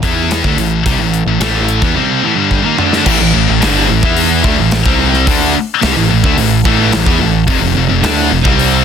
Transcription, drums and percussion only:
0, 0, Header, 1, 2, 480
1, 0, Start_track
1, 0, Key_signature, 0, "minor"
1, 0, Tempo, 552486
1, 752, Time_signature, 4, 2, 24, 8
1, 7685, End_track
2, 0, Start_track
2, 0, Title_t, "Drums"
2, 24, Note_on_c, 9, 42, 68
2, 25, Note_on_c, 9, 36, 102
2, 111, Note_off_c, 9, 42, 0
2, 112, Note_off_c, 9, 36, 0
2, 269, Note_on_c, 9, 42, 80
2, 277, Note_on_c, 9, 38, 103
2, 356, Note_off_c, 9, 42, 0
2, 364, Note_off_c, 9, 38, 0
2, 385, Note_on_c, 9, 36, 100
2, 472, Note_off_c, 9, 36, 0
2, 504, Note_on_c, 9, 42, 67
2, 591, Note_off_c, 9, 42, 0
2, 745, Note_on_c, 9, 36, 106
2, 747, Note_on_c, 9, 42, 88
2, 832, Note_off_c, 9, 36, 0
2, 834, Note_off_c, 9, 42, 0
2, 987, Note_on_c, 9, 42, 60
2, 1074, Note_off_c, 9, 42, 0
2, 1223, Note_on_c, 9, 42, 80
2, 1231, Note_on_c, 9, 38, 105
2, 1310, Note_off_c, 9, 42, 0
2, 1318, Note_off_c, 9, 38, 0
2, 1463, Note_on_c, 9, 42, 67
2, 1550, Note_off_c, 9, 42, 0
2, 1581, Note_on_c, 9, 36, 97
2, 1668, Note_off_c, 9, 36, 0
2, 2180, Note_on_c, 9, 36, 58
2, 2267, Note_off_c, 9, 36, 0
2, 2420, Note_on_c, 9, 45, 83
2, 2506, Note_off_c, 9, 45, 0
2, 2545, Note_on_c, 9, 38, 71
2, 2632, Note_off_c, 9, 38, 0
2, 2657, Note_on_c, 9, 49, 126
2, 2659, Note_on_c, 9, 36, 104
2, 2744, Note_off_c, 9, 49, 0
2, 2746, Note_off_c, 9, 36, 0
2, 3144, Note_on_c, 9, 46, 57
2, 3152, Note_on_c, 9, 38, 104
2, 3231, Note_off_c, 9, 46, 0
2, 3239, Note_off_c, 9, 38, 0
2, 3501, Note_on_c, 9, 36, 115
2, 3587, Note_off_c, 9, 36, 0
2, 3618, Note_on_c, 9, 46, 64
2, 3705, Note_off_c, 9, 46, 0
2, 3859, Note_on_c, 9, 36, 107
2, 3946, Note_off_c, 9, 36, 0
2, 4094, Note_on_c, 9, 46, 65
2, 4102, Note_on_c, 9, 38, 118
2, 4181, Note_off_c, 9, 46, 0
2, 4189, Note_off_c, 9, 38, 0
2, 4219, Note_on_c, 9, 36, 115
2, 4306, Note_off_c, 9, 36, 0
2, 4463, Note_on_c, 9, 38, 33
2, 4550, Note_off_c, 9, 38, 0
2, 4580, Note_on_c, 9, 36, 112
2, 4580, Note_on_c, 9, 46, 67
2, 4666, Note_off_c, 9, 46, 0
2, 4667, Note_off_c, 9, 36, 0
2, 5059, Note_on_c, 9, 46, 62
2, 5067, Note_on_c, 9, 38, 108
2, 5146, Note_off_c, 9, 46, 0
2, 5154, Note_off_c, 9, 38, 0
2, 5420, Note_on_c, 9, 36, 115
2, 5507, Note_off_c, 9, 36, 0
2, 5540, Note_on_c, 9, 46, 62
2, 5627, Note_off_c, 9, 46, 0
2, 5780, Note_on_c, 9, 36, 114
2, 5867, Note_off_c, 9, 36, 0
2, 6016, Note_on_c, 9, 46, 59
2, 6024, Note_on_c, 9, 38, 112
2, 6103, Note_off_c, 9, 46, 0
2, 6110, Note_off_c, 9, 38, 0
2, 6138, Note_on_c, 9, 36, 113
2, 6225, Note_off_c, 9, 36, 0
2, 6496, Note_on_c, 9, 46, 62
2, 6498, Note_on_c, 9, 36, 112
2, 6583, Note_off_c, 9, 46, 0
2, 6585, Note_off_c, 9, 36, 0
2, 6982, Note_on_c, 9, 46, 62
2, 6990, Note_on_c, 9, 38, 115
2, 7069, Note_off_c, 9, 46, 0
2, 7077, Note_off_c, 9, 38, 0
2, 7342, Note_on_c, 9, 36, 118
2, 7429, Note_off_c, 9, 36, 0
2, 7465, Note_on_c, 9, 46, 59
2, 7552, Note_off_c, 9, 46, 0
2, 7685, End_track
0, 0, End_of_file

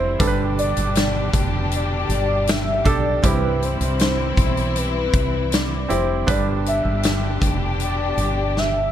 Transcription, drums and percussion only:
0, 0, Header, 1, 2, 480
1, 0, Start_track
1, 0, Tempo, 759494
1, 129, Time_signature, 4, 2, 24, 8
1, 5637, End_track
2, 0, Start_track
2, 0, Title_t, "Drums"
2, 126, Note_on_c, 9, 36, 104
2, 127, Note_on_c, 9, 42, 92
2, 189, Note_off_c, 9, 36, 0
2, 190, Note_off_c, 9, 42, 0
2, 370, Note_on_c, 9, 42, 56
2, 434, Note_off_c, 9, 42, 0
2, 484, Note_on_c, 9, 42, 59
2, 547, Note_off_c, 9, 42, 0
2, 603, Note_on_c, 9, 42, 92
2, 615, Note_on_c, 9, 38, 104
2, 666, Note_off_c, 9, 42, 0
2, 678, Note_off_c, 9, 38, 0
2, 844, Note_on_c, 9, 36, 75
2, 846, Note_on_c, 9, 42, 69
2, 907, Note_off_c, 9, 36, 0
2, 909, Note_off_c, 9, 42, 0
2, 1084, Note_on_c, 9, 42, 71
2, 1147, Note_off_c, 9, 42, 0
2, 1324, Note_on_c, 9, 42, 65
2, 1388, Note_off_c, 9, 42, 0
2, 1563, Note_on_c, 9, 42, 98
2, 1576, Note_on_c, 9, 38, 112
2, 1626, Note_off_c, 9, 42, 0
2, 1639, Note_off_c, 9, 38, 0
2, 1804, Note_on_c, 9, 36, 77
2, 1805, Note_on_c, 9, 42, 66
2, 1868, Note_off_c, 9, 36, 0
2, 1868, Note_off_c, 9, 42, 0
2, 2046, Note_on_c, 9, 36, 99
2, 2047, Note_on_c, 9, 42, 85
2, 2109, Note_off_c, 9, 36, 0
2, 2110, Note_off_c, 9, 42, 0
2, 2291, Note_on_c, 9, 42, 55
2, 2354, Note_off_c, 9, 42, 0
2, 2406, Note_on_c, 9, 42, 56
2, 2469, Note_off_c, 9, 42, 0
2, 2525, Note_on_c, 9, 42, 96
2, 2536, Note_on_c, 9, 38, 112
2, 2588, Note_off_c, 9, 42, 0
2, 2600, Note_off_c, 9, 38, 0
2, 2764, Note_on_c, 9, 36, 76
2, 2768, Note_on_c, 9, 42, 73
2, 2828, Note_off_c, 9, 36, 0
2, 2831, Note_off_c, 9, 42, 0
2, 2889, Note_on_c, 9, 42, 47
2, 2952, Note_off_c, 9, 42, 0
2, 3006, Note_on_c, 9, 42, 68
2, 3069, Note_off_c, 9, 42, 0
2, 3246, Note_on_c, 9, 36, 81
2, 3246, Note_on_c, 9, 42, 65
2, 3309, Note_off_c, 9, 36, 0
2, 3310, Note_off_c, 9, 42, 0
2, 3488, Note_on_c, 9, 42, 94
2, 3501, Note_on_c, 9, 38, 105
2, 3552, Note_off_c, 9, 42, 0
2, 3564, Note_off_c, 9, 38, 0
2, 3729, Note_on_c, 9, 42, 62
2, 3793, Note_off_c, 9, 42, 0
2, 3969, Note_on_c, 9, 36, 96
2, 3969, Note_on_c, 9, 42, 92
2, 4032, Note_off_c, 9, 36, 0
2, 4033, Note_off_c, 9, 42, 0
2, 4211, Note_on_c, 9, 42, 54
2, 4274, Note_off_c, 9, 42, 0
2, 4445, Note_on_c, 9, 42, 93
2, 4457, Note_on_c, 9, 38, 108
2, 4508, Note_off_c, 9, 42, 0
2, 4520, Note_off_c, 9, 38, 0
2, 4687, Note_on_c, 9, 36, 72
2, 4692, Note_on_c, 9, 42, 75
2, 4751, Note_off_c, 9, 36, 0
2, 4755, Note_off_c, 9, 42, 0
2, 4928, Note_on_c, 9, 42, 68
2, 4991, Note_off_c, 9, 42, 0
2, 5168, Note_on_c, 9, 42, 57
2, 5231, Note_off_c, 9, 42, 0
2, 5417, Note_on_c, 9, 38, 55
2, 5480, Note_off_c, 9, 38, 0
2, 5637, End_track
0, 0, End_of_file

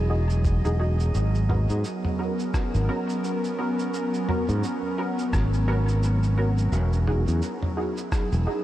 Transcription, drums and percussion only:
0, 0, Header, 1, 2, 480
1, 0, Start_track
1, 0, Key_signature, 5, "minor"
1, 0, Tempo, 697674
1, 788, Time_signature, 4, 2, 24, 8
1, 5944, End_track
2, 0, Start_track
2, 0, Title_t, "Drums"
2, 208, Note_on_c, 9, 69, 42
2, 277, Note_off_c, 9, 69, 0
2, 307, Note_on_c, 9, 36, 100
2, 307, Note_on_c, 9, 69, 51
2, 376, Note_off_c, 9, 36, 0
2, 376, Note_off_c, 9, 69, 0
2, 447, Note_on_c, 9, 69, 29
2, 516, Note_off_c, 9, 69, 0
2, 688, Note_on_c, 9, 69, 41
2, 757, Note_off_c, 9, 69, 0
2, 788, Note_on_c, 9, 69, 56
2, 857, Note_off_c, 9, 69, 0
2, 929, Note_on_c, 9, 69, 30
2, 997, Note_off_c, 9, 69, 0
2, 1029, Note_on_c, 9, 45, 64
2, 1098, Note_off_c, 9, 45, 0
2, 1168, Note_on_c, 9, 69, 43
2, 1237, Note_off_c, 9, 69, 0
2, 1269, Note_on_c, 9, 69, 53
2, 1338, Note_off_c, 9, 69, 0
2, 1408, Note_on_c, 9, 45, 59
2, 1477, Note_off_c, 9, 45, 0
2, 1648, Note_on_c, 9, 69, 41
2, 1717, Note_off_c, 9, 69, 0
2, 1747, Note_on_c, 9, 36, 107
2, 1749, Note_on_c, 9, 37, 91
2, 1749, Note_on_c, 9, 69, 54
2, 1815, Note_off_c, 9, 36, 0
2, 1818, Note_off_c, 9, 37, 0
2, 1818, Note_off_c, 9, 69, 0
2, 1889, Note_on_c, 9, 69, 31
2, 1958, Note_off_c, 9, 69, 0
2, 2129, Note_on_c, 9, 69, 43
2, 2198, Note_off_c, 9, 69, 0
2, 2230, Note_on_c, 9, 69, 54
2, 2299, Note_off_c, 9, 69, 0
2, 2369, Note_on_c, 9, 69, 31
2, 2438, Note_off_c, 9, 69, 0
2, 2609, Note_on_c, 9, 69, 43
2, 2677, Note_off_c, 9, 69, 0
2, 2710, Note_on_c, 9, 69, 55
2, 2778, Note_off_c, 9, 69, 0
2, 2849, Note_on_c, 9, 69, 31
2, 2918, Note_off_c, 9, 69, 0
2, 2949, Note_on_c, 9, 45, 64
2, 3018, Note_off_c, 9, 45, 0
2, 3089, Note_on_c, 9, 69, 42
2, 3158, Note_off_c, 9, 69, 0
2, 3189, Note_on_c, 9, 69, 54
2, 3258, Note_off_c, 9, 69, 0
2, 3568, Note_on_c, 9, 69, 43
2, 3637, Note_off_c, 9, 69, 0
2, 3666, Note_on_c, 9, 36, 106
2, 3669, Note_on_c, 9, 37, 94
2, 3669, Note_on_c, 9, 69, 57
2, 3735, Note_off_c, 9, 36, 0
2, 3738, Note_off_c, 9, 37, 0
2, 3738, Note_off_c, 9, 69, 0
2, 3809, Note_on_c, 9, 69, 31
2, 3878, Note_off_c, 9, 69, 0
2, 4048, Note_on_c, 9, 69, 44
2, 4117, Note_off_c, 9, 69, 0
2, 4149, Note_on_c, 9, 69, 54
2, 4218, Note_off_c, 9, 69, 0
2, 4288, Note_on_c, 9, 69, 31
2, 4356, Note_off_c, 9, 69, 0
2, 4528, Note_on_c, 9, 69, 42
2, 4596, Note_off_c, 9, 69, 0
2, 4628, Note_on_c, 9, 69, 54
2, 4696, Note_off_c, 9, 69, 0
2, 4767, Note_on_c, 9, 69, 29
2, 4836, Note_off_c, 9, 69, 0
2, 4867, Note_on_c, 9, 45, 59
2, 4936, Note_off_c, 9, 45, 0
2, 5007, Note_on_c, 9, 69, 42
2, 5076, Note_off_c, 9, 69, 0
2, 5107, Note_on_c, 9, 69, 53
2, 5176, Note_off_c, 9, 69, 0
2, 5246, Note_on_c, 9, 45, 59
2, 5315, Note_off_c, 9, 45, 0
2, 5487, Note_on_c, 9, 69, 43
2, 5555, Note_off_c, 9, 69, 0
2, 5586, Note_on_c, 9, 36, 114
2, 5588, Note_on_c, 9, 37, 99
2, 5588, Note_on_c, 9, 69, 55
2, 5655, Note_off_c, 9, 36, 0
2, 5657, Note_off_c, 9, 37, 0
2, 5657, Note_off_c, 9, 69, 0
2, 5728, Note_on_c, 9, 69, 31
2, 5797, Note_off_c, 9, 69, 0
2, 5944, End_track
0, 0, End_of_file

